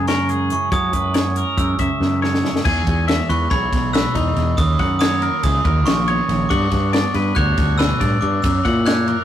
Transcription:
0.00 0.50 F#2 medium
0.00 0.51 F#2 medium
0.00 0.70 C#3 medium
0.00 0.70 F#3 medium
0.00 0.30 G#3 medium
0.00 0.51 E4 medium
0.07 0.19 B3 medium
0.07 0.30 A#4 medium
0.07 0.51 C#6 loud
0.07 snare loud
0.07 closed hi-hat medium
0.19 0.73 C#4 soft
0.29 1.57 G#3 medium
0.29 0.71 G#4 medium
0.29 closed hi-hat medium
0.50 0.70 F#2 medium
0.50 0.73 E4 medium
0.50 0.74 C#6 loud
0.50 closed hi-hat medium
0.72 2.43 F#2 medium
0.72 0.88 F#3 medium
0.72 2.44 E4 medium
0.72 0.93 C#5 medium
0.72 1.33 D#6 loud
0.72 kick loud
0.72 closed hi-hat medium
0.93 1.42 F#2 medium
0.93 2.00 C#4 medium
0.93 1.14 B4 medium
0.93 kick medium
0.93 closed hi-hat medium
1.14 2.62 F#3 medium
1.14 1.37 C#5 medium
1.14 snare loud
1.14 closed hi-hat medium
1.36 1.79 A#4 medium
1.36 closed hi-hat medium
1.57 1.74 F#2 loud
1.57 2.21 G#3 medium
1.57 2.40 E6 loud
1.57 kick loud
1.57 closed hi-hat medium
1.79 1.87 F#2 medium
1.79 2.63 C#3 medium
1.79 2.22 E5 medium
1.79 kick medium
1.79 closed hi-hat medium
2.00 2.50 F#2 medium
2.00 2.11 B3 medium
2.00 snare medium
2.11 2.65 C#4 medium
2.22 3.07 G#3 medium
2.22 2.65 C#5 medium
2.22 snare medium
2.34 snare medium
2.44 2.63 F#2 medium
2.44 2.86 E4 medium
2.44 snare medium
2.56 snare medium
2.65 4.36 E2 medium
2.65 2.82 E2 loud
2.65 4.15 D#4 medium
2.65 3.07 G#5 medium
2.65 kick loud
2.65 crash loud
2.86 3.19 E2 medium
2.86 3.51 G#4 medium
2.86 kick medium
2.86 ride medium
3.08 3.94 G#3 medium
3.08 3.30 E5 medium
3.08 snare loud
3.08 ride loud
3.29 3.46 E2 loud
3.29 4.58 E3 medium
3.29 3.50 B4 medium
3.29 3.52 C#6 medium
3.29 ride medium
3.50 3.67 B1 medium
3.50 4.56 G#4 medium
3.50 3.93 C#5 medium
3.50 3.95 B5 medium
3.50 kick loud
3.50 snare soft
3.50 ride medium
3.72 4.05 B1 medium
3.72 4.58 B2 medium
3.72 kick medium
3.72 snare soft
3.72 ride medium
3.93 4.59 G#3 medium
3.93 4.15 B4 medium
3.93 4.54 E6 loud
3.93 snare loud
3.93 ride loud
4.15 4.31 E2 medium
4.15 4.58 D#4 medium
4.15 4.37 D#4 medium
4.15 kick medium
4.15 ride medium
4.36 4.53 E2 medium
4.36 4.58 E2 medium
4.36 4.56 D#4 medium
4.36 snare soft
4.36 ride medium
4.57 4.74 D#2 medium
4.57 5.64 D#3 medium
4.57 6.08 C#4 medium
4.57 4.98 D#6 loud
4.57 kick loud
4.57 ride loud
4.79 5.28 F#2 medium
4.79 5.44 F#4 medium
4.79 5.01 F#5 medium
4.79 kick medium
4.79 snare soft
4.79 ride medium
4.99 5.87 A#3 medium
4.99 5.22 C#5 medium
4.99 5.43 D#6 loud
4.99 snare loud
4.99 ride loud
5.22 6.54 F#3 medium
5.22 5.43 A#4 medium
5.22 ride medium
5.43 5.60 C#2 medium
5.43 5.54 E4 medium
5.43 5.65 G#4 medium
5.43 5.88 D#6 loud
5.43 kick medium
5.43 snare soft
5.43 ride loud
5.54 6.51 F#4 medium
5.65 5.86 D#2 medium
5.65 6.29 D#3 medium
5.65 6.08 A#4 medium
5.65 kick medium
5.65 ride medium
5.86 6.19 A#1 medium
5.86 6.49 A#3 medium
5.86 6.31 C#6 loud
5.86 snare loud
5.86 ride loud
6.08 6.20 B3 medium
6.08 6.50 C#5 medium
6.08 ride medium
6.20 6.30 C#4 medium
6.29 6.45 A#1 medium
6.29 6.49 D#3 medium
6.29 6.49 C#4 medium
6.29 snare soft
6.29 ride medium
6.49 6.67 G2 loud
6.49 8.00 G2 medium
6.49 6.62 B3 medium
6.49 6.93 F#5 medium
6.49 7.38 D6 medium
6.49 kick loud
6.49 ride loud
6.62 8.43 D4 medium
6.71 7.04 G2 medium
6.71 7.36 F#4 medium
6.71 kick medium
6.71 snare soft
6.71 ride medium
6.93 8.42 B3 medium
6.93 7.15 D5 medium
6.93 snare loud
6.93 ride medium
7.14 7.31 G2 loud
7.14 8.42 G3 medium
7.14 7.37 B4 medium
7.14 snare soft
7.14 ride medium
7.35 7.53 D2 loud
7.35 8.41 F#4 medium
7.35 7.79 C#5 medium
7.35 7.80 F#6 loud
7.35 kick loud
7.35 ride loud
7.57 7.91 D2 medium
7.57 7.79 D3 medium
7.57 kick medium
7.57 snare soft
7.57 ride medium
7.78 8.01 B2 medium
7.78 8.01 B4 loud
7.78 8.23 E6 loud
7.78 snare loud
7.78 ride loud
8.00 8.17 G2 medium
8.00 8.22 A2 medium
8.00 8.44 D5 medium
8.00 kick medium
8.00 snare soft
8.00 ride medium
8.21 8.39 G2 medium
8.21 8.44 D6 loud
8.21 ride medium
8.42 9.24 F#2 medium
8.42 8.60 F#2 loud
8.42 8.54 B3 medium
8.42 8.87 E6 loud
8.42 kick loud
8.42 ride loud
8.54 9.24 C#4 medium
8.65 9.14 A#2 medium
8.65 9.24 E4 medium
8.65 8.87 F#5 medium
8.65 kick medium
8.65 snare soft
8.65 ride medium
8.86 8.98 G#3 medium
8.86 9.08 C#5 medium
8.86 9.24 F#6 medium
8.86 snare loud
8.86 ride loud
8.98 9.24 A#3 medium
9.08 9.24 F#3 medium
9.08 9.24 A#4 medium
9.08 ride medium

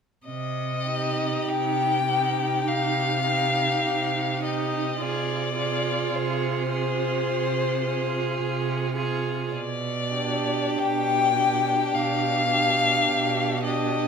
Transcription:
0.26 1.34 C3 soft
0.26 1.50 D#5 soft
0.88 2.06 D#4 soft
0.88 2.07 G4 soft
1.48 2.54 C3 soft
1.48 2.69 G5 medium
2.08 3.24 D#4 soft
2.08 3.25 G4 soft
2.68 3.71 C3 soft
2.68 4.43 F5 medium
3.27 4.41 D#4 soft
3.27 4.41 G4 soft
3.85 4.87 C3 soft
4.43 4.99 D#4 soft
4.43 5.00 G4 soft
4.43 5.03 D#5 soft
5.00 6.01 C3 soft
5.00 5.56 F4 soft
5.00 5.57 G#4 soft
5.00 6.17 D5 soft
5.57 6.69 F4 soft
5.57 6.69 G#4 soft
6.14 7.15 C3 soft
6.14 8.96 C5 soft
6.71 7.82 F4 soft
6.71 7.82 G#4 soft
7.28 8.27 C3 soft
7.84 8.94 F4 soft
7.84 8.93 G#4 soft
8.40 9.39 C3 soft
8.96 9.52 F4 soft
8.96 9.52 G#4 soft
9.53 10.64 B2 soft
9.53 10.80 D5 soft
10.14 11.35 D4 soft
10.14 11.35 G4 soft
10.78 11.80 B2 soft
10.78 11.96 G5 medium
11.37 12.48 D4 soft
11.37 12.48 G4 soft
11.94 12.94 B2 soft
11.94 13.64 F5 medium
12.50 13.61 D4 soft
12.50 13.61 G4 soft
13.08 14.06 B2 soft
13.64 14.08 D4 soft
13.64 14.08 G4 soft
13.64 14.08 D#5 soft

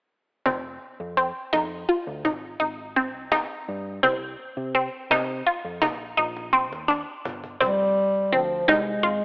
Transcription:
0.46 0.77 F1 medium
0.46 1.08 C4 medium
0.46 cajon bass medium
0.82 cajon slap soft
1.00 1.30 F2 medium
1.17 1.49 C4 medium
1.17 cajon slap soft
1.53 1.84 F2 medium
1.53 1.84 D#4 medium
1.53 cajon slap medium
1.89 2.20 F4 medium
1.89 cajon slap soft
2.07 2.22 D2 medium
2.25 2.55 G#1 medium
2.25 2.56 D#4 medium
2.25 cajon bass medium
2.60 3.15 G#1 medium
2.60 2.91 D#4 medium
2.60 cajon slap soft
2.96 3.28 C4 medium
2.96 cajon slap soft
3.15 3.45 C2 medium
3.32 3.94 D#4 medium
3.32 cajon slap medium
3.68 3.99 G2 medium
3.68 cajon slap soft
4.03 4.34 C2 medium
4.03 4.66 C4 medium
4.03 cajon bass medium
4.40 cajon slap soft
4.57 4.88 C3 medium
4.75 5.06 C4 medium
4.75 cajon slap soft
5.11 5.41 C3 medium
5.11 5.42 D#4 medium
5.11 cajon slap medium
5.47 5.78 F4 medium
5.47 cajon slap soft
5.65 5.80 F2 medium
5.82 6.13 A#1 medium
5.82 6.13 D#4 medium
5.82 cajon bass medium
6.17 6.72 A#1 medium
6.17 6.49 D#4 medium
6.17 cajon slap soft
6.36 cajon slap soft
6.53 6.84 C4 medium
6.53 cajon slap soft
6.72 7.03 D#2 medium
6.72 cajon slap soft
6.88 7.51 D4 medium
6.88 cajon slap medium
7.25 7.56 G1 medium
7.25 cajon bass medium
7.44 cajon bass soft
7.60 8.34 F1 medium
7.60 8.35 G3 medium
7.60 8.23 C4 medium
7.60 cajon bass medium
7.97 cajon slap soft
8.32 8.63 D2 medium
8.32 8.70 F3 medium
8.32 8.64 C4 medium
8.68 8.98 C2 medium
8.68 9.25 G#3 medium
8.68 8.99 D#4 medium
8.68 cajon slap medium
9.03 9.19 G#1 medium
9.03 9.25 F4 medium

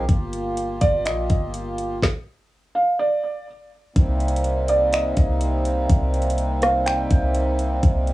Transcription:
0.00 1.99 G4 medium
0.09 0.79 G1 loud
0.09 2.01 A#3 medium
0.09 2.01 F4 medium
0.09 kick loud
0.09 closed hi-hat medium
0.33 closed hi-hat medium
0.57 closed hi-hat medium
0.81 1.07 G1 loud
0.81 1.04 D5 medium
0.81 kick loud
0.81 closed hi-hat medium
1.06 1.29 A#1 loud
1.06 1.51 D#5 medium
1.06 finger snap loud
1.06 closed hi-hat medium
1.30 2.00 G1 loud
1.30 kick loud
1.30 closed hi-hat medium
1.54 closed hi-hat medium
1.78 closed hi-hat medium
2.02 kick loud
2.02 snare medium
2.75 2.98 F5 medium
2.99 3.45 D5 medium
3.96 5.13 C2 loud
3.96 8.13 C3 medium
3.96 8.13 G3 medium
3.96 8.13 A#3 medium
3.96 8.13 C4 medium
3.96 8.13 D#4 medium
3.96 kick loud
3.96 closed hi-hat medium
4.20 closed hi-hat soft
4.28 closed hi-hat medium
4.36 closed hi-hat medium
4.44 closed hi-hat medium
4.68 4.92 D5 medium
4.68 closed hi-hat medium
4.93 5.39 D#5 medium
4.93 finger snap loud
4.93 closed hi-hat medium
5.17 5.87 C2 loud
5.17 kick loud
5.17 closed hi-hat medium
5.41 closed hi-hat medium
5.65 closed hi-hat medium
5.89 7.07 C2 loud
5.89 kick loud
5.89 closed hi-hat medium
6.14 closed hi-hat soft
6.22 closed hi-hat medium
6.30 closed hi-hat medium
6.38 closed hi-hat medium
6.62 6.85 F5 medium
6.62 cross-stick medium
6.62 closed hi-hat medium
6.86 7.32 G5 medium
6.86 finger snap loud
6.86 closed hi-hat medium
7.10 7.80 C2 loud
7.10 kick loud
7.10 closed hi-hat medium
7.34 closed hi-hat medium
7.59 closed hi-hat medium
7.83 8.13 C2 loud
7.83 kick loud
7.83 closed hi-hat medium
8.07 closed hi-hat soft

